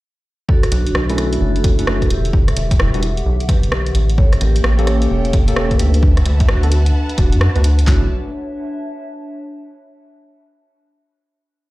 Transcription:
0.48 ambient pad D3, vibraphone F#4 A4, kick
0.63 ambient pad C#5, cross-stick, closed hi-hat
0.69 analog synth bass B1, vibraphone D4 F#4, ambient pad A4 E5, closed hi-hat
0.87 closed hi-hat
0.95 analog synth bass B1, cross-stick
1.10 tine electric piano A3 C#4 D4 E4, vibraphone F#4 A4, closed hi-hat
1.18 cross-stick, closed hi-hat
1.33 closed hi-hat
1.41 analog synth bass F#1, vibraphone F#4 A4
1.56 closed hi-hat
1.64 kick, closed hi-hat
1.79 tine electric piano A3 C#4 D4 E4, vibraphone F#4 A4, closed hi-hat
1.87 cross-stick
2.02 kick, closed hi-hat
2.10 analog synth bass E1, vibraphone E4 G4, closed hi-hat
2.21 ambient pad G4, closed hi-hat
2.33 kick
2.48 cross-stick, closed hi-hat
2.56 analog synth bass E1, closed hi-hat
2.65 ambient pad F#5
2.71 kick, closed hi-hat
2.79 analog synth bass E1, vibraphone G3 E4, cross-stick
2.94 tine electric piano G3 D4 E4 F#4, closed hi-hat
3.03 closed hi-hat
3.17 closed hi-hat
3.26 analog synth bass B1
3.40 closed hi-hat
3.49 vibraphone G4 B4, kick, cross-stick, closed hi-hat
3.63 closed hi-hat
3.72 cross-stick
3.86 closed hi-hat
3.95 analog synth bass A1, ambient pad C#4, closed hi-hat
4.04 ambient pad A#3
4.10 closed hi-hat
4.18 vibraphone A4 C#5, violin section C#5 E5 G5, kick
4.33 cross-stick, closed hi-hat
4.41 analog synth bass A1, vibraphone G4 A#4, ambient pad G5, closed hi-hat
4.56 closed hi-hat
4.64 analog synth bass A1, cross-stick
4.79 tine electric piano A#3 C#4 G4 A4, vibraphone A4 C#5, closed hi-hat
4.87 cross-stick, closed hi-hat
5.02 closed hi-hat
5.10 analog synth bass E1, vibraphone A4 C#5
5.25 closed hi-hat
5.33 kick, closed hi-hat
5.48 tine electric piano A#3 C#4 G4 A4, vibraphone A4 C#5, closed hi-hat
5.56 cross-stick
5.71 kick, closed hi-hat
5.79 analog synth bass D2, vibraphone D4 B4, closed hi-hat
5.94 closed hi-hat
6.02 ambient pad D4, violin section B4 F#5 A5, kick
6.17 ambient pad B4, cross-stick, closed hi-hat
6.25 analog synth bass D2, ambient pad F#5, closed hi-hat
6.40 kick, closed hi-hat
6.48 analog synth bass D2, vibraphone D4 F#4, cross-stick
6.63 tine electric piano B3 D4 F#4 A4, closed hi-hat
6.72 closed hi-hat
6.86 closed hi-hat
7.09 closed hi-hat
7.18 analog synth bass D1, vibraphone D4 F#4, kick, cross-stick, closed hi-hat
7.32 analog synth bass F#2, closed hi-hat
7.41 cross-stick
7.56 analog synth bass D2, tine electric piano B3 D4 F#4 B4, closed hi-hat
7.64 closed hi-hat
7.79 closed hi-hat
7.87 analog synth bass B1, tine electric piano A3 C#4 D4 E4, ambient pad D4, vibraphone F#4, violin section C#5 D5 E5 A5, kick, snare, clap
7.96 ambient pad C#5
8.04 ambient pad E5
8.09 ambient pad A5

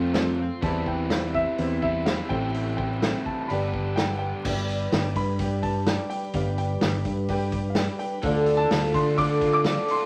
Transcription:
Already playing: overdriven electric guitar F2 C3 F3 A3 C4 F4, fingered electric bass F2, twelve-string acoustic guitar F3 A3 C4 F4 C5
0.13 twelve-string acoustic guitar A3 C4 F4 C5, upright piano A4 C5 F5, snare, open hi-hat
0.39 twelve-string acoustic guitar C4 F4 C5
0.62 fingered electric bass E2, overdriven electric guitar E3 G3 C4 E4, twelve-string acoustic guitar E3 G3 C4 E4 C5, upright piano G4 C5 E5, grand piano A5, kick, open hi-hat
0.85 twelve-string acoustic guitar C4 E4 C5, grand piano G5, kick
1.10 twelve-string acoustic guitar G3 C4 E4 C5, upright piano G4 C5 E5, grand piano F5, snare, open hi-hat
1.34 grand piano E5, kick
1.57 fingered electric bass E2, twelve-string acoustic guitar E3 G3 C4 E4 C5, upright piano G4 C5 E5, open hi-hat
1.82 overdriven electric guitar E3 G3 C4 E4, grand piano E5, kick
2.05 overdriven electric guitar E3 G3 C4 E4, twelve-string acoustic guitar G3 C4 E4 C5, upright piano G4 C5 E5, grand piano F5, snare, open hi-hat
2.29 fingered electric bass A1, overdriven electric guitar A2 E3 A3 C4 E4, twelve-string acoustic guitar A2 E3 G3 C4 E4 C5, upright piano A4 C5 G5, grand piano G5, kick
2.54 open hi-hat
2.77 twelve-string acoustic guitar C4 E4 C5, grand piano G5, kick
2.81 twelve-string acoustic guitar G3
3.02 twelve-string acoustic guitar G3 C4 E4 C5, upright piano A4 C5 G5, snare, open hi-hat
3.26 grand piano A5, kick
3.41 grand piano A5
3.48 fingered electric bass G1, overdriven electric guitar G2 D3 G3 B3 D4 G4, twelve-string acoustic guitar G3 D4 G4 B4, upright piano B4 D5 G5, grand piano B5, open hi-hat
3.74 kick
3.96 twelve-string acoustic guitar G3 D4 G4 B4, upright piano B4 D5 G5, grand piano G5, snare, open hi-hat
4.19 twelve-string acoustic guitar G4 B4, grand piano G5
4.25 twelve-string acoustic guitar D4
4.43 fingered electric bass G1, tonewheel organ G3 D4 B4, twelve-string acoustic guitar G3 D4 G4, upright piano B4 D5 G5, kick, crash
4.48 twelve-string acoustic guitar B4
4.69 open hi-hat
4.90 fingered electric bass G1, twelve-string acoustic guitar G3, upright piano B4 D5 G5, snare, open hi-hat
4.95 twelve-string acoustic guitar D4 G4 B4
5.16 fingered electric bass G2, twelve-string acoustic guitar D4 G4 B4, grand piano B5, kick, open hi-hat
5.38 twelve-string acoustic guitar G3 D4 G4 B4, upright piano B4 D5 G5, kick, open hi-hat
5.62 grand piano A5, kick, open hi-hat
5.86 twelve-string acoustic guitar G3 D4 G4 B4, upright piano B4 D5 G5, snare, open hi-hat
6.10 grand piano G5, open hi-hat
6.33 fingered electric bass G1, twelve-string acoustic guitar G3 D4 G4 B4, upright piano B4 D5 F5, kick, open hi-hat
6.58 grand piano G5, open hi-hat
6.81 fingered electric bass G1, twelve-string acoustic guitar G3 D4 G4 B4, upright piano B4 D5 G5, snare, open hi-hat
7.05 fingered electric bass G2, twelve-string acoustic guitar D4 G4 B4, kick, open hi-hat
7.28 twelve-string acoustic guitar G3 D4 G4 B4, upright piano B4 D5 G5, kick, open hi-hat
7.52 kick, open hi-hat
7.70 grand piano F5
7.75 twelve-string acoustic guitar G3 D4 G4 B4, upright piano B4 D5 G5, grand piano G5, snare, open hi-hat
7.99 twelve-string acoustic guitar D4 G4 B4, grand piano G5, open hi-hat
8.22 fingered electric bass D2, overdriven electric guitar D3, twelve-string acoustic guitar D3 A3 D4, tonewheel organ A3 F4, upright piano A4 D5 F5, kick, open hi-hat
8.26 twelve-string acoustic guitar F4 A4
8.46 overdriven electric guitar D4, open hi-hat
8.57 grand piano A5
8.69 fingered electric bass D2, twelve-string acoustic guitar A3 D4 F4, overdriven electric guitar F4, upright piano A4 D5 F5, snare, open hi-hat
8.73 twelve-string acoustic guitar A4
8.94 fingered electric bass D3, overdriven electric guitar D4, grand piano C6, kick, open hi-hat
9.16 twelve-string acoustic guitar D3 A3 D4 F4 A4, overdriven electric guitar D3, upright piano A4 D5 F5, grand piano D6, kick, open hi-hat
9.41 overdriven electric guitar F4, kick, open hi-hat
9.53 grand piano D6
9.64 twelve-string acoustic guitar A3 D4 F4 A4, upright piano A4 D5 F5, overdriven electric guitar A4, snare, open hi-hat
9.88 overdriven electric guitar F4, grand piano C6, open hi-hat

